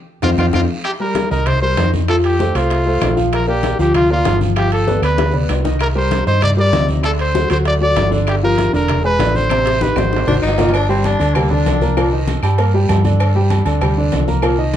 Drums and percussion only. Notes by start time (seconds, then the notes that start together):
0.22 low bongo, high conga, high timbale, long guiro, claves
0.38 low bongo, high conga, high timbale, long guiro, claves
0.53 low bongo, high conga, high timbale, long guiro, claves
0.84 high bongo, high conga, high timbale, claves
1.00 high conga
1.15 high bongo, high conga, high timbale, low timbale, short guiro
1.31 short guiro
1.46 high bongo, high conga, low conga, high timbale, long guiro, claves
1.77 high bongo, low bongo, high conga, high timbale, low timbale, short guiro
1.93 high conga, short guiro
2.08 high bongo, high conga, high timbale, claves
2.24 high bongo, high conga, high timbale
2.40 high bongo, high conga, low timbale, short guiro
2.55 high bongo, high conga, high timbale, short guiro, claves
2.70 high bongo, high conga, high timbale, long guiro
2.87 high bongo, high conga
3.01 high bongo, low bongo, high conga, high timbale, low timbale, short guiro, claves
3.17 high conga, short guiro
3.33 high bongo, high timbale, long guiro, claves
3.48 high conga
3.63 high bongo, high conga, high timbale, low timbale, short guiro
3.79 short guiro
3.94 high bongo, high conga, low conga, high timbale, long guiro, claves
4.10 high conga
4.25 high bongo, low bongo, high conga, high timbale, low timbale, short guiro
4.41 high conga, short guiro
4.56 high bongo, high conga, high timbale, long guiro, claves
4.72 high bongo, high conga, high timbale
4.87 high bongo, high conga, low timbale, short guiro
5.03 high bongo, high timbale, short guiro, claves
5.18 high bongo, high conga, high timbale, long guiro
5.34 low conga
5.49 low bongo, high timbale, low timbale, short guiro, claves
5.65 low bongo, low conga, short guiro
5.79 high bongo, high conga, high timbale, long guiro, claves
5.97 high conga
6.11 high bongo, high conga, high timbale, low timbale, short guiro
6.27 short guiro
6.42 high bongo, high conga, low conga, high timbale, long guiro, claves
6.58 high conga
6.73 high bongo, low bongo, high conga, high timbale, low timbale, short guiro
6.88 high conga, short guiro
7.03 high bongo, high conga, high timbale, long guiro, claves
7.19 high bongo, high conga, high timbale
7.35 high bongo, high conga, low timbale, short guiro
7.50 high bongo, high conga, high timbale, short guiro, claves
7.65 high bongo, high conga, high timbale, long guiro
7.82 high bongo, high conga
7.96 high bongo, low bongo, high conga, high timbale, low timbale, short guiro, claves
8.12 high conga, short guiro
8.27 high bongo, high conga, high timbale, long guiro, claves
8.43 high conga
8.58 high bongo, high conga, high timbale, low timbale, short guiro
8.74 short guiro
8.88 high bongo, high conga, low conga, high timbale, long guiro, claves
9.04 high conga
9.19 high bongo, low bongo, high conga, high timbale, low timbale, short guiro
9.35 high conga, short guiro
9.50 high bongo, high conga, high timbale, long guiro, claves
9.66 high bongo, high conga, high timbale
9.81 high conga, low timbale, short guiro
9.96 high bongo, high conga, high timbale, short guiro, claves
10.13 low bongo, high timbale, long guiro
10.27 low bongo, low conga, low timbale
10.43 short guiro, claves
10.48 low timbale
10.58 low bongo, low conga, low timbale, short guiro
10.69 low timbale
10.74 cowbell, high conga, low agogo, long guiro, claves
10.89 high conga
11.04 cowbell, high conga, low timbale, low agogo, short guiro
11.20 cowbell, low agogo, short guiro
11.35 cowbell, high conga, low conga, low agogo, long guiro, claves
11.51 high conga, low conga
11.66 cowbell, high conga, low timbale, low agogo, short guiro
11.81 high conga, short guiro
11.97 cowbell, high conga, low agogo, long guiro, claves
12.13 high conga
12.28 cowbell, high conga, low timbale, low agogo, short guiro
12.43 high conga, low agogo, short guiro, claves
12.58 cowbell, high conga, low agogo, long guiro
12.74 high conga
12.89 cowbell, high conga, low timbale, low agogo, short guiro, claves
13.05 high conga, low agogo, short guiro
13.20 cowbell, high conga, low agogo, long guiro, claves
13.35 high conga
13.50 cowbell, high conga, low timbale, low agogo, short guiro
13.66 cowbell, low agogo, short guiro
13.81 cowbell, high conga, low conga, low agogo, long guiro, claves
13.97 high conga
14.12 cowbell, high conga, low timbale, low agogo, short guiro
14.28 high conga, short guiro
14.42 cowbell, high conga, low agogo, long guiro, claves
14.59 high conga
14.74 short guiro